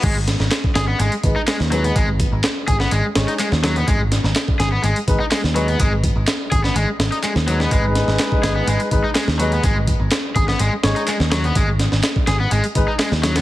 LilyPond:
<<
  \new Staff \with { instrumentName = "Horn section" } { \time 4/4 \key gis \minor \tempo 4 = 125 r2 r8 <gis dis' b'>8 r8 <gis dis' b'>8 | r2 r8 <gis dis' cis''>8 r4 | r2 r8 <gis dis' b'>8 r8 <gis dis' b'>8 | r2. r8 <gis dis' b'>8~ |
<gis dis' b'>2~ <gis dis' b'>8 <gis dis' b'>8 r8 <gis dis' b'>8 | r2 r8 <gis dis' cis''>8 r4 | r2 r8 <gis dis' b'>8 r4 | }
  \new Staff \with { instrumentName = "Overdriven electric guitar" } { \time 4/4 \key gis \minor gis16 r4 r16 gis'16 b16 gis16 r8 dis'16 gis16 r16 fis16 b16 | gis16 r4 r16 gis'16 b16 gis16 r8 dis'16 gis16 r16 fis16 b16 | gis16 r4 r16 gis'16 b16 gis16 r8 dis'16 gis16 r16 fis16 b16 | gis16 r4 r16 gis'16 b16 gis16 r8 dis'16 gis16 r16 fis16 b16 |
gis16 r4 r16 gis'16 b16 gis16 r8 dis'16 gis16 r16 fis16 b16 | gis16 r4 r16 gis'16 b16 gis16 r8 dis'16 gis16 r16 fis16 b16 | gis16 r4 r16 gis'16 b16 gis16 r8 dis'16 gis16 r16 fis16 b16 | }
  \new Staff \with { instrumentName = "Picked electric bass" } { \clef bass \time 4/4 \key gis \minor gis,,8. gis,,16 r8 gis,,16 r16 gis,,16 r16 gis,,16 r8 dis,8. | gis,,8. gis,,16 r8 gis,,16 r16 gis,,16 r16 gis,,16 r8 dis,8. | gis,,8. gis,,16 r8 gis,,16 r16 gis,,16 r16 gis,,16 r8 dis,8. | gis,,8. gis,,16 r8 gis,,16 r16 gis,,16 r16 gis,,16 r8 dis,8. |
gis,,8. gis,,16 r8 gis,,16 r16 gis,,16 r16 gis,,16 r8 dis,8. | gis,,8. gis,,16 r8 gis,,16 r16 gis,,16 r16 gis,,16 r8 dis,8. | gis,,8. gis,,16 r8 gis,,16 r16 gis,,16 r16 gis,,16 r8 dis,8. | }
  \new DrumStaff \with { instrumentName = "Drums" } \drummode { \time 4/4 <cymc hh bd>8 <hh sn>16 sn16 <hc hh sn>16 bd16 <hh sn>8 hh16 hh16 <hh bd>8 <hc hho sn>16 sn16 hh16 hh16 | <hh bd>8 <hh bd>8 <hc hh sn>8 <hh bd>16 sn16 hh8 <hh sn>16 hh16 <hc hh>16 sn16 <hh sn>16 hh16 | <hh bd>8 <hh sn>16 sn16 <hc hh sn>16 bd16 <hh sn>8 hh16 hh16 <hh bd>8 <hc hho sn>16 sn16 hh16 hh16 | <hh bd>8 <hh bd>8 <hc hh sn>8 <hh bd>16 sn16 hh8 <hh sn>16 hh16 <hc hh>16 sn16 hh16 sn16 |
<hh bd>8 <hh sn>16 sn16 <hc hh sn>16 bd16 <hh sn>8 hh16 hh16 <hh bd>8 <hc hho sn>16 sn16 hh16 hh16 | <hh bd>8 <hh bd>8 <hc hh sn>8 <hh bd>16 sn16 hh8 <hh sn>16 hh16 <hc hh>16 sn16 <hh sn>16 hh16 | <hh bd>8 <hh sn>16 sn16 <hc hh sn>16 bd16 <hh sn>8 hh16 hh16 <hh bd>8 <hc hho sn>16 sn16 <hh sn>16 <hh sn>16 | }
>>